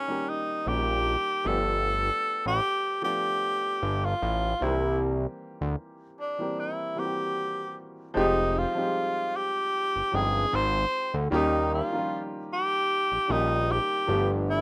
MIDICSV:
0, 0, Header, 1, 4, 480
1, 0, Start_track
1, 0, Tempo, 789474
1, 1117, Time_signature, 4, 2, 24, 8
1, 8884, End_track
2, 0, Start_track
2, 0, Title_t, "Tenor saxophone"
2, 0, Program_c, 0, 66
2, 0, Note_on_c, 0, 61, 76
2, 179, Note_on_c, 0, 63, 80
2, 188, Note_off_c, 0, 61, 0
2, 415, Note_on_c, 0, 67, 96
2, 424, Note_off_c, 0, 63, 0
2, 894, Note_on_c, 0, 69, 101
2, 904, Note_off_c, 0, 67, 0
2, 1495, Note_off_c, 0, 69, 0
2, 1505, Note_on_c, 0, 67, 100
2, 1822, Note_off_c, 0, 67, 0
2, 1849, Note_on_c, 0, 67, 96
2, 2463, Note_on_c, 0, 65, 85
2, 2472, Note_off_c, 0, 67, 0
2, 2814, Note_on_c, 0, 64, 72
2, 2823, Note_off_c, 0, 65, 0
2, 3046, Note_off_c, 0, 64, 0
2, 3771, Note_on_c, 0, 62, 72
2, 4012, Note_on_c, 0, 64, 76
2, 4021, Note_off_c, 0, 62, 0
2, 4252, Note_on_c, 0, 67, 84
2, 4261, Note_off_c, 0, 64, 0
2, 4725, Note_off_c, 0, 67, 0
2, 4977, Note_on_c, 0, 63, 94
2, 5219, Note_on_c, 0, 65, 90
2, 5228, Note_off_c, 0, 63, 0
2, 5694, Note_on_c, 0, 67, 100
2, 5703, Note_off_c, 0, 65, 0
2, 6176, Note_on_c, 0, 68, 96
2, 6185, Note_off_c, 0, 67, 0
2, 6415, Note_on_c, 0, 72, 102
2, 6425, Note_off_c, 0, 68, 0
2, 6776, Note_off_c, 0, 72, 0
2, 6897, Note_on_c, 0, 63, 97
2, 7111, Note_off_c, 0, 63, 0
2, 7139, Note_on_c, 0, 65, 81
2, 7428, Note_off_c, 0, 65, 0
2, 7619, Note_on_c, 0, 67, 107
2, 8096, Note_on_c, 0, 63, 91
2, 8105, Note_off_c, 0, 67, 0
2, 8337, Note_on_c, 0, 67, 97
2, 8346, Note_off_c, 0, 63, 0
2, 8697, Note_off_c, 0, 67, 0
2, 8816, Note_on_c, 0, 64, 96
2, 8884, Note_off_c, 0, 64, 0
2, 8884, End_track
3, 0, Start_track
3, 0, Title_t, "Grand piano"
3, 0, Program_c, 1, 0
3, 0, Control_c, 1, 64, 127
3, 0, Note_on_c, 1, 51, 101
3, 0, Note_on_c, 1, 55, 94
3, 0, Note_on_c, 1, 58, 97
3, 0, Note_on_c, 1, 61, 96
3, 0, Note_on_c, 1, 67, 110
3, 44, Note_off_c, 1, 51, 0
3, 44, Note_on_c, 1, 51, 60
3, 49, Note_off_c, 1, 55, 0
3, 49, Note_on_c, 1, 55, 57
3, 54, Note_off_c, 1, 58, 0
3, 54, Note_on_c, 1, 58, 59
3, 60, Note_off_c, 1, 61, 0
3, 60, Note_on_c, 1, 61, 59
3, 65, Note_off_c, 1, 67, 0
3, 65, Note_on_c, 1, 67, 72
3, 360, Note_off_c, 1, 51, 0
3, 363, Note_off_c, 1, 55, 0
3, 365, Note_off_c, 1, 58, 0
3, 369, Note_off_c, 1, 61, 0
3, 371, Note_off_c, 1, 67, 0
3, 394, Note_on_c, 1, 51, 60
3, 397, Note_on_c, 1, 55, 58
3, 404, Note_on_c, 1, 58, 52
3, 408, Note_on_c, 1, 61, 53
3, 415, Note_on_c, 1, 65, 52
3, 448, Note_off_c, 1, 65, 0
3, 453, Note_on_c, 1, 67, 60
3, 876, Note_off_c, 1, 51, 0
3, 876, Note_on_c, 1, 53, 68
3, 877, Note_off_c, 1, 55, 0
3, 880, Note_off_c, 1, 58, 0
3, 882, Note_on_c, 1, 57, 66
3, 883, Note_off_c, 1, 61, 0
3, 884, Control_c, 1, 64, 0
3, 888, Note_on_c, 1, 59, 64
3, 889, Note_off_c, 1, 67, 0
3, 893, Note_on_c, 1, 62, 63
3, 898, Note_on_c, 1, 67, 79
3, 1001, Control_c, 1, 64, 127
3, 1742, Note_off_c, 1, 53, 0
3, 1745, Note_off_c, 1, 57, 0
3, 1748, Note_off_c, 1, 59, 0
3, 1750, Note_off_c, 1, 62, 0
3, 1753, Note_off_c, 1, 67, 0
3, 1834, Note_on_c, 1, 53, 66
3, 1838, Note_on_c, 1, 57, 63
3, 1844, Note_on_c, 1, 59, 61
3, 1849, Note_on_c, 1, 62, 60
3, 1854, Note_on_c, 1, 65, 69
3, 2701, Note_off_c, 1, 53, 0
3, 2703, Note_off_c, 1, 57, 0
3, 2706, Note_off_c, 1, 59, 0
3, 2708, Note_off_c, 1, 62, 0
3, 2711, Note_off_c, 1, 65, 0
3, 2794, Note_on_c, 1, 51, 53
3, 2798, Note_on_c, 1, 55, 60
3, 2804, Control_c, 1, 64, 0
3, 2804, Note_on_c, 1, 58, 63
3, 2810, Note_on_c, 1, 60, 59
3, 2814, Note_on_c, 1, 67, 76
3, 2832, Note_on_c, 1, 52, 65
3, 2838, Note_off_c, 1, 51, 0
3, 2898, Control_c, 1, 64, 127
3, 3663, Note_off_c, 1, 55, 0
3, 3666, Note_off_c, 1, 58, 0
3, 3669, Note_off_c, 1, 60, 0
3, 3671, Note_off_c, 1, 67, 0
3, 3680, Note_off_c, 1, 52, 0
3, 3882, Note_on_c, 1, 52, 61
3, 3886, Note_on_c, 1, 55, 56
3, 3892, Note_on_c, 1, 58, 56
3, 3897, Note_on_c, 1, 60, 56
3, 3902, Note_on_c, 1, 67, 66
3, 4199, Note_off_c, 1, 52, 0
3, 4201, Note_off_c, 1, 55, 0
3, 4204, Note_off_c, 1, 58, 0
3, 4207, Note_off_c, 1, 60, 0
3, 4209, Note_off_c, 1, 67, 0
3, 4230, Note_on_c, 1, 52, 59
3, 4235, Note_on_c, 1, 55, 55
3, 4239, Note_on_c, 1, 58, 54
3, 4246, Note_on_c, 1, 60, 56
3, 4249, Note_on_c, 1, 66, 53
3, 4285, Note_off_c, 1, 66, 0
3, 4289, Note_on_c, 1, 67, 67
3, 4882, Note_off_c, 1, 52, 0
3, 4885, Note_off_c, 1, 55, 0
3, 4887, Note_off_c, 1, 58, 0
3, 4890, Note_off_c, 1, 60, 0
3, 4912, Note_off_c, 1, 67, 0
3, 4948, Note_on_c, 1, 53, 104
3, 4951, Note_on_c, 1, 56, 93
3, 4957, Note_on_c, 1, 60, 86
3, 4963, Note_on_c, 1, 63, 93
3, 4965, Control_c, 1, 64, 0
3, 4968, Note_on_c, 1, 67, 113
3, 5084, Control_c, 1, 64, 127
3, 5281, Note_off_c, 1, 53, 0
3, 5282, Note_off_c, 1, 56, 0
3, 5285, Note_off_c, 1, 60, 0
3, 5288, Note_off_c, 1, 63, 0
3, 5290, Note_off_c, 1, 67, 0
3, 5318, Note_on_c, 1, 53, 66
3, 5323, Note_on_c, 1, 55, 52
3, 5329, Note_on_c, 1, 60, 67
3, 5334, Note_on_c, 1, 63, 59
3, 5339, Note_on_c, 1, 67, 76
3, 5361, Note_off_c, 1, 55, 0
3, 5363, Note_on_c, 1, 56, 62
3, 6070, Note_off_c, 1, 53, 0
3, 6075, Note_off_c, 1, 60, 0
3, 6078, Note_off_c, 1, 63, 0
3, 6080, Note_off_c, 1, 67, 0
3, 6093, Note_off_c, 1, 56, 0
3, 6151, Note_on_c, 1, 53, 65
3, 6157, Note_on_c, 1, 56, 59
3, 6162, Note_on_c, 1, 60, 58
3, 6167, Note_on_c, 1, 63, 61
3, 6172, Note_on_c, 1, 79, 74
3, 6803, Note_off_c, 1, 53, 0
3, 6806, Note_off_c, 1, 56, 0
3, 6808, Note_off_c, 1, 60, 0
3, 6811, Note_off_c, 1, 63, 0
3, 6813, Note_off_c, 1, 79, 0
3, 6871, Note_on_c, 1, 51, 94
3, 6877, Note_on_c, 1, 55, 97
3, 6884, Note_on_c, 1, 58, 90
3, 6886, Control_c, 1, 64, 0
3, 6887, Note_on_c, 1, 61, 90
3, 6894, Note_on_c, 1, 67, 114
3, 6982, Control_c, 1, 64, 127
3, 7202, Note_off_c, 1, 51, 0
3, 7205, Note_off_c, 1, 55, 0
3, 7208, Note_off_c, 1, 58, 0
3, 7210, Note_off_c, 1, 61, 0
3, 7213, Note_off_c, 1, 67, 0
3, 7244, Note_on_c, 1, 51, 73
3, 7250, Note_on_c, 1, 53, 47
3, 7254, Note_on_c, 1, 58, 65
3, 7260, Note_on_c, 1, 61, 59
3, 7265, Note_on_c, 1, 65, 76
3, 7285, Note_off_c, 1, 53, 0
3, 7290, Note_on_c, 1, 55, 65
3, 7993, Note_off_c, 1, 51, 0
3, 7998, Note_off_c, 1, 58, 0
3, 8001, Note_off_c, 1, 61, 0
3, 8003, Note_off_c, 1, 65, 0
3, 8016, Note_off_c, 1, 55, 0
3, 8072, Note_on_c, 1, 51, 73
3, 8076, Note_on_c, 1, 55, 67
3, 8084, Note_on_c, 1, 58, 66
3, 8088, Note_on_c, 1, 61, 68
3, 8094, Note_on_c, 1, 67, 85
3, 8552, Note_on_c, 1, 53, 71
3, 8554, Note_off_c, 1, 51, 0
3, 8557, Note_off_c, 1, 55, 0
3, 8559, Note_on_c, 1, 57, 72
3, 8561, Note_off_c, 1, 58, 0
3, 8563, Note_off_c, 1, 61, 0
3, 8565, Note_off_c, 1, 67, 0
3, 8565, Control_c, 1, 64, 0
3, 8565, Note_on_c, 1, 59, 70
3, 8569, Note_on_c, 1, 62, 69
3, 8574, Note_on_c, 1, 67, 90
3, 8686, Control_c, 1, 64, 127
3, 8884, Note_off_c, 1, 53, 0
3, 8884, Note_off_c, 1, 57, 0
3, 8884, Note_off_c, 1, 59, 0
3, 8884, Note_off_c, 1, 62, 0
3, 8884, Note_off_c, 1, 67, 0
3, 8884, End_track
4, 0, Start_track
4, 0, Title_t, "Analog synth bass"
4, 0, Program_c, 2, 38
4, 404, Note_on_c, 2, 34, 87
4, 707, Note_off_c, 2, 34, 0
4, 885, Note_on_c, 2, 31, 95
4, 1280, Note_off_c, 2, 31, 0
4, 1494, Note_on_c, 2, 33, 85
4, 1583, Note_off_c, 2, 33, 0
4, 2325, Note_on_c, 2, 31, 87
4, 2521, Note_off_c, 2, 31, 0
4, 2567, Note_on_c, 2, 33, 97
4, 2762, Note_off_c, 2, 33, 0
4, 2807, Note_on_c, 2, 36, 106
4, 3201, Note_off_c, 2, 36, 0
4, 3412, Note_on_c, 2, 38, 84
4, 3501, Note_off_c, 2, 38, 0
4, 4963, Note_on_c, 2, 29, 100
4, 5267, Note_off_c, 2, 29, 0
4, 6053, Note_on_c, 2, 31, 49
4, 6095, Note_off_c, 2, 31, 0
4, 6163, Note_on_c, 2, 31, 94
4, 6360, Note_off_c, 2, 31, 0
4, 6403, Note_on_c, 2, 32, 107
4, 6600, Note_off_c, 2, 32, 0
4, 6773, Note_on_c, 2, 38, 80
4, 6862, Note_off_c, 2, 38, 0
4, 6881, Note_on_c, 2, 39, 103
4, 7186, Note_off_c, 2, 39, 0
4, 7976, Note_on_c, 2, 34, 50
4, 8018, Note_off_c, 2, 34, 0
4, 8085, Note_on_c, 2, 34, 95
4, 8388, Note_off_c, 2, 34, 0
4, 8564, Note_on_c, 2, 31, 102
4, 8884, Note_off_c, 2, 31, 0
4, 8884, End_track
0, 0, End_of_file